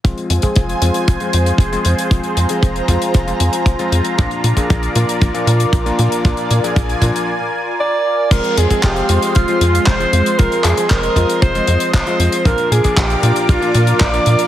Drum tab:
CC |----------------|----------------|----------------|----------------|
HH |xxxxxxxxxxxxxxxx|xxxxxxxxxxxxxxxx|xxxxxxxxxxxxxxxx|xxxxxxxx--------|
CP |----------------|----------------|----------------|----------------|
BD |o--oo---o---o---|o---o-o-o---o---|o--oo---o---o---|o---o-o---------|

CC |x---------------|----------------|----------------|
HH |xxxxxxxxxxxxxxxx|xxxxxxxxxxxxxxxx|xxxxxxxxxxxxxxxx|
CP |----x-------x---|--x-x-------x---|----x-------x---|
BD |o--oo---o---o---|o---o-o-o---o---|o--oo---o---o---|